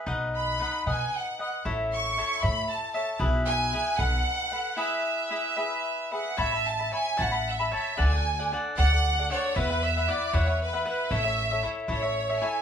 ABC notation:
X:1
M:6/8
L:1/16
Q:3/8=76
K:E
V:1 name="Violin section"
z2 b4 g2 f2 f2 | z2 c'4 b2 a2 a2 | z2 g4 f6 | e8- e2 f2 |
[K:A] e2 a2 g2 f2 e2 e2 | g4 z2 f4 c2 | B2 e2 d2 c2 B2 B2 | e4 z2 c4 g2 |]
V:2 name="Cavaquinho"
[DBdf]4 [DBdf]2 [DBdf]4 [Bdf]2 | [EAce]4 [EAce]2 [EAce]4 [Ace]2 | [EGBe]4 [EGBe]2 [DABf]4 [ABf]2 | [EGBe]4 [EGBe]2 [EGBe]4 [GBe]2 |
[K:A] [ceab] [eab]2 [eab] [ceab]2 [ceab] [eab]2 [eab] [ceab]2 | [DAdf] [Adf]2 [Adf] [DAdf]2 [DAdf] [Adf]2 [Adf] [DAdf]2 | [EBef] [Bef]2 [Bef] [EBef]2 [EBef] [Bef]2 [Bef] [EBef]2 | [EAce] [Ace]2 [Ace] [EAce]2 [EAce] [Ace]2 [Ace] [EAce]2 |]
V:3 name="Upright bass" clef=bass
B,,,6 B,,2 z4 | A,,,6 A,,2 z4 | B,,,6 B,,,2 z4 | z12 |
[K:A] A,,,6 A,,,6 | D,,6 D,,6 | E,,6 E,,6 | A,,,6 A,,,6 |]